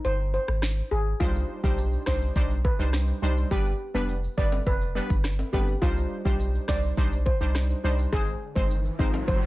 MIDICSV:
0, 0, Header, 1, 6, 480
1, 0, Start_track
1, 0, Key_signature, -3, "minor"
1, 0, Tempo, 576923
1, 1003, Time_signature, 4, 2, 24, 8
1, 7872, End_track
2, 0, Start_track
2, 0, Title_t, "Steel pan"
2, 0, Program_c, 0, 114
2, 40, Note_on_c, 0, 72, 87
2, 113, Note_off_c, 0, 72, 0
2, 282, Note_on_c, 0, 72, 76
2, 355, Note_off_c, 0, 72, 0
2, 760, Note_on_c, 0, 68, 75
2, 834, Note_off_c, 0, 68, 0
2, 999, Note_on_c, 0, 65, 96
2, 1073, Note_off_c, 0, 65, 0
2, 1361, Note_on_c, 0, 67, 71
2, 1435, Note_off_c, 0, 67, 0
2, 1722, Note_on_c, 0, 72, 86
2, 1795, Note_off_c, 0, 72, 0
2, 2202, Note_on_c, 0, 71, 76
2, 2275, Note_off_c, 0, 71, 0
2, 2921, Note_on_c, 0, 67, 109
2, 2994, Note_off_c, 0, 67, 0
2, 3282, Note_on_c, 0, 71, 75
2, 3355, Note_off_c, 0, 71, 0
2, 3640, Note_on_c, 0, 74, 77
2, 3714, Note_off_c, 0, 74, 0
2, 3883, Note_on_c, 0, 71, 91
2, 3956, Note_off_c, 0, 71, 0
2, 4121, Note_on_c, 0, 71, 75
2, 4195, Note_off_c, 0, 71, 0
2, 4599, Note_on_c, 0, 67, 76
2, 4673, Note_off_c, 0, 67, 0
2, 4839, Note_on_c, 0, 65, 98
2, 4913, Note_off_c, 0, 65, 0
2, 5201, Note_on_c, 0, 67, 70
2, 5274, Note_off_c, 0, 67, 0
2, 5564, Note_on_c, 0, 74, 83
2, 5636, Note_off_c, 0, 74, 0
2, 6039, Note_on_c, 0, 72, 76
2, 6113, Note_off_c, 0, 72, 0
2, 6761, Note_on_c, 0, 68, 110
2, 6834, Note_off_c, 0, 68, 0
2, 7118, Note_on_c, 0, 72, 75
2, 7192, Note_off_c, 0, 72, 0
2, 7479, Note_on_c, 0, 63, 77
2, 7553, Note_off_c, 0, 63, 0
2, 7720, Note_on_c, 0, 72, 88
2, 7793, Note_off_c, 0, 72, 0
2, 7872, End_track
3, 0, Start_track
3, 0, Title_t, "Synth stab"
3, 0, Program_c, 1, 62
3, 1002, Note_on_c, 1, 55, 92
3, 1003, Note_on_c, 1, 62, 85
3, 1005, Note_on_c, 1, 63, 84
3, 1006, Note_on_c, 1, 72, 99
3, 1333, Note_off_c, 1, 55, 0
3, 1334, Note_off_c, 1, 62, 0
3, 1335, Note_off_c, 1, 63, 0
3, 1336, Note_off_c, 1, 72, 0
3, 1360, Note_on_c, 1, 55, 80
3, 1362, Note_on_c, 1, 62, 70
3, 1363, Note_on_c, 1, 63, 69
3, 1366, Note_on_c, 1, 72, 84
3, 1693, Note_off_c, 1, 55, 0
3, 1694, Note_off_c, 1, 62, 0
3, 1694, Note_off_c, 1, 63, 0
3, 1696, Note_off_c, 1, 72, 0
3, 1721, Note_on_c, 1, 55, 80
3, 1723, Note_on_c, 1, 62, 72
3, 1725, Note_on_c, 1, 63, 75
3, 1727, Note_on_c, 1, 72, 90
3, 1943, Note_off_c, 1, 55, 0
3, 1944, Note_off_c, 1, 62, 0
3, 1945, Note_off_c, 1, 63, 0
3, 1946, Note_off_c, 1, 72, 0
3, 1960, Note_on_c, 1, 55, 91
3, 1962, Note_on_c, 1, 62, 84
3, 1963, Note_on_c, 1, 63, 86
3, 1965, Note_on_c, 1, 72, 98
3, 2127, Note_off_c, 1, 55, 0
3, 2128, Note_off_c, 1, 62, 0
3, 2129, Note_off_c, 1, 63, 0
3, 2129, Note_off_c, 1, 72, 0
3, 2320, Note_on_c, 1, 55, 76
3, 2321, Note_on_c, 1, 62, 67
3, 2323, Note_on_c, 1, 63, 71
3, 2326, Note_on_c, 1, 72, 79
3, 2653, Note_off_c, 1, 55, 0
3, 2653, Note_off_c, 1, 62, 0
3, 2654, Note_off_c, 1, 63, 0
3, 2655, Note_off_c, 1, 72, 0
3, 2680, Note_on_c, 1, 55, 82
3, 2682, Note_on_c, 1, 62, 73
3, 2683, Note_on_c, 1, 63, 77
3, 2685, Note_on_c, 1, 72, 90
3, 2902, Note_off_c, 1, 55, 0
3, 2903, Note_off_c, 1, 62, 0
3, 2904, Note_off_c, 1, 63, 0
3, 2905, Note_off_c, 1, 72, 0
3, 2921, Note_on_c, 1, 55, 97
3, 2923, Note_on_c, 1, 59, 83
3, 2925, Note_on_c, 1, 62, 86
3, 2925, Note_on_c, 1, 71, 108
3, 3087, Note_off_c, 1, 55, 0
3, 3088, Note_off_c, 1, 59, 0
3, 3090, Note_off_c, 1, 62, 0
3, 3090, Note_off_c, 1, 71, 0
3, 3280, Note_on_c, 1, 55, 76
3, 3282, Note_on_c, 1, 59, 69
3, 3284, Note_on_c, 1, 62, 74
3, 3285, Note_on_c, 1, 71, 85
3, 3447, Note_off_c, 1, 55, 0
3, 3448, Note_off_c, 1, 59, 0
3, 3449, Note_off_c, 1, 62, 0
3, 3450, Note_off_c, 1, 71, 0
3, 3640, Note_on_c, 1, 55, 82
3, 3641, Note_on_c, 1, 59, 74
3, 3644, Note_on_c, 1, 62, 74
3, 3645, Note_on_c, 1, 71, 88
3, 3807, Note_off_c, 1, 55, 0
3, 3808, Note_off_c, 1, 59, 0
3, 3809, Note_off_c, 1, 62, 0
3, 3809, Note_off_c, 1, 71, 0
3, 4120, Note_on_c, 1, 55, 78
3, 4122, Note_on_c, 1, 59, 72
3, 4122, Note_on_c, 1, 62, 70
3, 4125, Note_on_c, 1, 71, 85
3, 4287, Note_off_c, 1, 55, 0
3, 4288, Note_off_c, 1, 59, 0
3, 4288, Note_off_c, 1, 62, 0
3, 4289, Note_off_c, 1, 71, 0
3, 4600, Note_on_c, 1, 55, 79
3, 4603, Note_on_c, 1, 59, 75
3, 4604, Note_on_c, 1, 62, 71
3, 4606, Note_on_c, 1, 71, 90
3, 4767, Note_off_c, 1, 55, 0
3, 4769, Note_off_c, 1, 59, 0
3, 4769, Note_off_c, 1, 62, 0
3, 4770, Note_off_c, 1, 71, 0
3, 4840, Note_on_c, 1, 55, 95
3, 4841, Note_on_c, 1, 62, 85
3, 4843, Note_on_c, 1, 63, 83
3, 4845, Note_on_c, 1, 72, 106
3, 5173, Note_off_c, 1, 55, 0
3, 5173, Note_off_c, 1, 62, 0
3, 5174, Note_off_c, 1, 63, 0
3, 5175, Note_off_c, 1, 72, 0
3, 5199, Note_on_c, 1, 55, 77
3, 5201, Note_on_c, 1, 62, 71
3, 5203, Note_on_c, 1, 63, 67
3, 5204, Note_on_c, 1, 72, 87
3, 5532, Note_off_c, 1, 55, 0
3, 5533, Note_off_c, 1, 62, 0
3, 5534, Note_off_c, 1, 63, 0
3, 5535, Note_off_c, 1, 72, 0
3, 5560, Note_on_c, 1, 55, 80
3, 5561, Note_on_c, 1, 62, 72
3, 5564, Note_on_c, 1, 63, 73
3, 5564, Note_on_c, 1, 72, 88
3, 5782, Note_off_c, 1, 55, 0
3, 5783, Note_off_c, 1, 62, 0
3, 5784, Note_off_c, 1, 63, 0
3, 5784, Note_off_c, 1, 72, 0
3, 5799, Note_on_c, 1, 55, 91
3, 5802, Note_on_c, 1, 62, 87
3, 5803, Note_on_c, 1, 63, 89
3, 5804, Note_on_c, 1, 72, 102
3, 5967, Note_off_c, 1, 55, 0
3, 5968, Note_off_c, 1, 62, 0
3, 5969, Note_off_c, 1, 63, 0
3, 5969, Note_off_c, 1, 72, 0
3, 6160, Note_on_c, 1, 55, 74
3, 6162, Note_on_c, 1, 62, 68
3, 6164, Note_on_c, 1, 63, 71
3, 6165, Note_on_c, 1, 72, 82
3, 6493, Note_off_c, 1, 55, 0
3, 6493, Note_off_c, 1, 62, 0
3, 6494, Note_off_c, 1, 63, 0
3, 6495, Note_off_c, 1, 72, 0
3, 6520, Note_on_c, 1, 55, 80
3, 6523, Note_on_c, 1, 62, 74
3, 6524, Note_on_c, 1, 63, 72
3, 6526, Note_on_c, 1, 72, 91
3, 6742, Note_off_c, 1, 55, 0
3, 6743, Note_off_c, 1, 62, 0
3, 6744, Note_off_c, 1, 63, 0
3, 6745, Note_off_c, 1, 72, 0
3, 6759, Note_on_c, 1, 56, 95
3, 6761, Note_on_c, 1, 60, 81
3, 6762, Note_on_c, 1, 63, 81
3, 6764, Note_on_c, 1, 72, 99
3, 6926, Note_off_c, 1, 56, 0
3, 6927, Note_off_c, 1, 60, 0
3, 6928, Note_off_c, 1, 63, 0
3, 6929, Note_off_c, 1, 72, 0
3, 7120, Note_on_c, 1, 56, 73
3, 7122, Note_on_c, 1, 60, 72
3, 7124, Note_on_c, 1, 63, 67
3, 7125, Note_on_c, 1, 72, 86
3, 7287, Note_off_c, 1, 56, 0
3, 7288, Note_off_c, 1, 60, 0
3, 7289, Note_off_c, 1, 63, 0
3, 7290, Note_off_c, 1, 72, 0
3, 7480, Note_on_c, 1, 56, 82
3, 7482, Note_on_c, 1, 60, 74
3, 7483, Note_on_c, 1, 63, 72
3, 7485, Note_on_c, 1, 72, 89
3, 7647, Note_off_c, 1, 56, 0
3, 7648, Note_off_c, 1, 60, 0
3, 7649, Note_off_c, 1, 63, 0
3, 7650, Note_off_c, 1, 72, 0
3, 7872, End_track
4, 0, Start_track
4, 0, Title_t, "Sub bass"
4, 0, Program_c, 2, 38
4, 42, Note_on_c, 2, 31, 102
4, 316, Note_off_c, 2, 31, 0
4, 403, Note_on_c, 2, 32, 83
4, 677, Note_off_c, 2, 32, 0
4, 763, Note_on_c, 2, 32, 90
4, 945, Note_off_c, 2, 32, 0
4, 1003, Note_on_c, 2, 36, 108
4, 1185, Note_off_c, 2, 36, 0
4, 1362, Note_on_c, 2, 35, 96
4, 1636, Note_off_c, 2, 35, 0
4, 1723, Note_on_c, 2, 36, 91
4, 1905, Note_off_c, 2, 36, 0
4, 1961, Note_on_c, 2, 35, 106
4, 2236, Note_off_c, 2, 35, 0
4, 2322, Note_on_c, 2, 36, 96
4, 2596, Note_off_c, 2, 36, 0
4, 2682, Note_on_c, 2, 36, 91
4, 2865, Note_off_c, 2, 36, 0
4, 2922, Note_on_c, 2, 31, 112
4, 3105, Note_off_c, 2, 31, 0
4, 3282, Note_on_c, 2, 29, 95
4, 3556, Note_off_c, 2, 29, 0
4, 3643, Note_on_c, 2, 31, 93
4, 3825, Note_off_c, 2, 31, 0
4, 3882, Note_on_c, 2, 29, 95
4, 4156, Note_off_c, 2, 29, 0
4, 4245, Note_on_c, 2, 31, 96
4, 4518, Note_off_c, 2, 31, 0
4, 4603, Note_on_c, 2, 31, 85
4, 4785, Note_off_c, 2, 31, 0
4, 4844, Note_on_c, 2, 36, 99
4, 5026, Note_off_c, 2, 36, 0
4, 5204, Note_on_c, 2, 35, 90
4, 5477, Note_off_c, 2, 35, 0
4, 5563, Note_on_c, 2, 36, 97
4, 5745, Note_off_c, 2, 36, 0
4, 5804, Note_on_c, 2, 35, 87
4, 6077, Note_off_c, 2, 35, 0
4, 6164, Note_on_c, 2, 36, 85
4, 6437, Note_off_c, 2, 36, 0
4, 6524, Note_on_c, 2, 36, 92
4, 6706, Note_off_c, 2, 36, 0
4, 6764, Note_on_c, 2, 32, 102
4, 6946, Note_off_c, 2, 32, 0
4, 7123, Note_on_c, 2, 31, 93
4, 7397, Note_off_c, 2, 31, 0
4, 7483, Note_on_c, 2, 32, 86
4, 7665, Note_off_c, 2, 32, 0
4, 7722, Note_on_c, 2, 31, 104
4, 7872, Note_off_c, 2, 31, 0
4, 7872, End_track
5, 0, Start_track
5, 0, Title_t, "Riser"
5, 0, Program_c, 3, 103
5, 6762, Note_on_c, 3, 60, 83
5, 7872, Note_off_c, 3, 60, 0
5, 7872, End_track
6, 0, Start_track
6, 0, Title_t, "Drums"
6, 40, Note_on_c, 9, 42, 72
6, 124, Note_off_c, 9, 42, 0
6, 402, Note_on_c, 9, 37, 94
6, 485, Note_off_c, 9, 37, 0
6, 517, Note_on_c, 9, 37, 94
6, 521, Note_on_c, 9, 42, 81
6, 523, Note_on_c, 9, 38, 113
6, 601, Note_off_c, 9, 37, 0
6, 604, Note_off_c, 9, 42, 0
6, 607, Note_off_c, 9, 38, 0
6, 1002, Note_on_c, 9, 42, 71
6, 1002, Note_on_c, 9, 82, 75
6, 1003, Note_on_c, 9, 36, 117
6, 1085, Note_off_c, 9, 42, 0
6, 1085, Note_off_c, 9, 82, 0
6, 1086, Note_off_c, 9, 36, 0
6, 1122, Note_on_c, 9, 82, 54
6, 1206, Note_off_c, 9, 82, 0
6, 1363, Note_on_c, 9, 36, 92
6, 1366, Note_on_c, 9, 82, 61
6, 1446, Note_off_c, 9, 36, 0
6, 1449, Note_off_c, 9, 82, 0
6, 1481, Note_on_c, 9, 82, 79
6, 1482, Note_on_c, 9, 42, 70
6, 1564, Note_off_c, 9, 82, 0
6, 1565, Note_off_c, 9, 42, 0
6, 1602, Note_on_c, 9, 82, 51
6, 1685, Note_off_c, 9, 82, 0
6, 1716, Note_on_c, 9, 37, 95
6, 1722, Note_on_c, 9, 38, 125
6, 1723, Note_on_c, 9, 36, 92
6, 1725, Note_on_c, 9, 82, 58
6, 1800, Note_off_c, 9, 37, 0
6, 1806, Note_off_c, 9, 36, 0
6, 1806, Note_off_c, 9, 38, 0
6, 1808, Note_off_c, 9, 82, 0
6, 1842, Note_on_c, 9, 82, 68
6, 1925, Note_off_c, 9, 82, 0
6, 1961, Note_on_c, 9, 42, 74
6, 1961, Note_on_c, 9, 82, 71
6, 1962, Note_on_c, 9, 36, 98
6, 2044, Note_off_c, 9, 42, 0
6, 2045, Note_off_c, 9, 36, 0
6, 2045, Note_off_c, 9, 82, 0
6, 2084, Note_on_c, 9, 82, 55
6, 2167, Note_off_c, 9, 82, 0
6, 2203, Note_on_c, 9, 36, 100
6, 2286, Note_off_c, 9, 36, 0
6, 2324, Note_on_c, 9, 82, 69
6, 2407, Note_off_c, 9, 82, 0
6, 2438, Note_on_c, 9, 37, 89
6, 2441, Note_on_c, 9, 82, 67
6, 2442, Note_on_c, 9, 42, 80
6, 2444, Note_on_c, 9, 38, 115
6, 2521, Note_off_c, 9, 37, 0
6, 2525, Note_off_c, 9, 42, 0
6, 2525, Note_off_c, 9, 82, 0
6, 2527, Note_off_c, 9, 38, 0
6, 2561, Note_on_c, 9, 82, 57
6, 2644, Note_off_c, 9, 82, 0
6, 2688, Note_on_c, 9, 82, 52
6, 2771, Note_off_c, 9, 82, 0
6, 2804, Note_on_c, 9, 82, 63
6, 2887, Note_off_c, 9, 82, 0
6, 2922, Note_on_c, 9, 42, 69
6, 2923, Note_on_c, 9, 36, 116
6, 2923, Note_on_c, 9, 82, 72
6, 3005, Note_off_c, 9, 42, 0
6, 3006, Note_off_c, 9, 36, 0
6, 3006, Note_off_c, 9, 82, 0
6, 3045, Note_on_c, 9, 82, 56
6, 3128, Note_off_c, 9, 82, 0
6, 3287, Note_on_c, 9, 82, 62
6, 3370, Note_off_c, 9, 82, 0
6, 3401, Note_on_c, 9, 42, 68
6, 3404, Note_on_c, 9, 82, 80
6, 3484, Note_off_c, 9, 42, 0
6, 3487, Note_off_c, 9, 82, 0
6, 3525, Note_on_c, 9, 82, 53
6, 3609, Note_off_c, 9, 82, 0
6, 3642, Note_on_c, 9, 36, 95
6, 3645, Note_on_c, 9, 82, 56
6, 3726, Note_off_c, 9, 36, 0
6, 3728, Note_off_c, 9, 82, 0
6, 3762, Note_on_c, 9, 65, 64
6, 3762, Note_on_c, 9, 82, 66
6, 3846, Note_off_c, 9, 65, 0
6, 3846, Note_off_c, 9, 82, 0
6, 3880, Note_on_c, 9, 82, 73
6, 3881, Note_on_c, 9, 42, 72
6, 3882, Note_on_c, 9, 36, 99
6, 3964, Note_off_c, 9, 42, 0
6, 3964, Note_off_c, 9, 82, 0
6, 3965, Note_off_c, 9, 36, 0
6, 4004, Note_on_c, 9, 82, 54
6, 4087, Note_off_c, 9, 82, 0
6, 4245, Note_on_c, 9, 36, 94
6, 4245, Note_on_c, 9, 82, 69
6, 4329, Note_off_c, 9, 36, 0
6, 4329, Note_off_c, 9, 82, 0
6, 4359, Note_on_c, 9, 37, 93
6, 4363, Note_on_c, 9, 42, 82
6, 4363, Note_on_c, 9, 82, 69
6, 4365, Note_on_c, 9, 38, 122
6, 4443, Note_off_c, 9, 37, 0
6, 4446, Note_off_c, 9, 42, 0
6, 4447, Note_off_c, 9, 82, 0
6, 4448, Note_off_c, 9, 38, 0
6, 4484, Note_on_c, 9, 65, 59
6, 4484, Note_on_c, 9, 82, 57
6, 4567, Note_off_c, 9, 65, 0
6, 4567, Note_off_c, 9, 82, 0
6, 4604, Note_on_c, 9, 36, 98
6, 4610, Note_on_c, 9, 65, 76
6, 4610, Note_on_c, 9, 82, 51
6, 4687, Note_off_c, 9, 36, 0
6, 4693, Note_off_c, 9, 65, 0
6, 4693, Note_off_c, 9, 82, 0
6, 4724, Note_on_c, 9, 82, 67
6, 4808, Note_off_c, 9, 82, 0
6, 4842, Note_on_c, 9, 42, 70
6, 4843, Note_on_c, 9, 36, 119
6, 4843, Note_on_c, 9, 82, 75
6, 4925, Note_off_c, 9, 42, 0
6, 4926, Note_off_c, 9, 36, 0
6, 4926, Note_off_c, 9, 82, 0
6, 4967, Note_on_c, 9, 82, 52
6, 5050, Note_off_c, 9, 82, 0
6, 5204, Note_on_c, 9, 36, 90
6, 5209, Note_on_c, 9, 82, 62
6, 5287, Note_off_c, 9, 36, 0
6, 5293, Note_off_c, 9, 82, 0
6, 5322, Note_on_c, 9, 42, 67
6, 5324, Note_on_c, 9, 82, 84
6, 5405, Note_off_c, 9, 42, 0
6, 5407, Note_off_c, 9, 82, 0
6, 5448, Note_on_c, 9, 82, 54
6, 5531, Note_off_c, 9, 82, 0
6, 5558, Note_on_c, 9, 37, 95
6, 5563, Note_on_c, 9, 36, 97
6, 5564, Note_on_c, 9, 38, 123
6, 5565, Note_on_c, 9, 82, 57
6, 5641, Note_off_c, 9, 37, 0
6, 5646, Note_off_c, 9, 36, 0
6, 5647, Note_off_c, 9, 38, 0
6, 5649, Note_off_c, 9, 82, 0
6, 5683, Note_on_c, 9, 82, 66
6, 5767, Note_off_c, 9, 82, 0
6, 5802, Note_on_c, 9, 42, 74
6, 5803, Note_on_c, 9, 36, 96
6, 5805, Note_on_c, 9, 82, 76
6, 5885, Note_off_c, 9, 42, 0
6, 5886, Note_off_c, 9, 36, 0
6, 5888, Note_off_c, 9, 82, 0
6, 5925, Note_on_c, 9, 82, 53
6, 6008, Note_off_c, 9, 82, 0
6, 6044, Note_on_c, 9, 36, 96
6, 6127, Note_off_c, 9, 36, 0
6, 6165, Note_on_c, 9, 82, 72
6, 6248, Note_off_c, 9, 82, 0
6, 6280, Note_on_c, 9, 37, 91
6, 6283, Note_on_c, 9, 82, 69
6, 6284, Note_on_c, 9, 42, 76
6, 6286, Note_on_c, 9, 38, 123
6, 6363, Note_off_c, 9, 37, 0
6, 6367, Note_off_c, 9, 42, 0
6, 6367, Note_off_c, 9, 82, 0
6, 6369, Note_off_c, 9, 38, 0
6, 6402, Note_on_c, 9, 82, 58
6, 6485, Note_off_c, 9, 82, 0
6, 6530, Note_on_c, 9, 82, 51
6, 6613, Note_off_c, 9, 82, 0
6, 6644, Note_on_c, 9, 82, 68
6, 6728, Note_off_c, 9, 82, 0
6, 6761, Note_on_c, 9, 82, 77
6, 6763, Note_on_c, 9, 36, 114
6, 6763, Note_on_c, 9, 42, 68
6, 6844, Note_off_c, 9, 82, 0
6, 6846, Note_off_c, 9, 36, 0
6, 6846, Note_off_c, 9, 42, 0
6, 6883, Note_on_c, 9, 82, 55
6, 6966, Note_off_c, 9, 82, 0
6, 7124, Note_on_c, 9, 36, 93
6, 7126, Note_on_c, 9, 82, 62
6, 7207, Note_off_c, 9, 36, 0
6, 7209, Note_off_c, 9, 82, 0
6, 7241, Note_on_c, 9, 82, 81
6, 7243, Note_on_c, 9, 42, 68
6, 7324, Note_off_c, 9, 82, 0
6, 7326, Note_off_c, 9, 42, 0
6, 7364, Note_on_c, 9, 82, 54
6, 7447, Note_off_c, 9, 82, 0
6, 7483, Note_on_c, 9, 36, 95
6, 7485, Note_on_c, 9, 82, 55
6, 7566, Note_off_c, 9, 36, 0
6, 7568, Note_off_c, 9, 82, 0
6, 7602, Note_on_c, 9, 65, 67
6, 7602, Note_on_c, 9, 82, 64
6, 7685, Note_off_c, 9, 65, 0
6, 7685, Note_off_c, 9, 82, 0
6, 7720, Note_on_c, 9, 82, 74
6, 7722, Note_on_c, 9, 36, 96
6, 7722, Note_on_c, 9, 42, 74
6, 7804, Note_off_c, 9, 82, 0
6, 7805, Note_off_c, 9, 36, 0
6, 7805, Note_off_c, 9, 42, 0
6, 7843, Note_on_c, 9, 82, 52
6, 7872, Note_off_c, 9, 82, 0
6, 7872, End_track
0, 0, End_of_file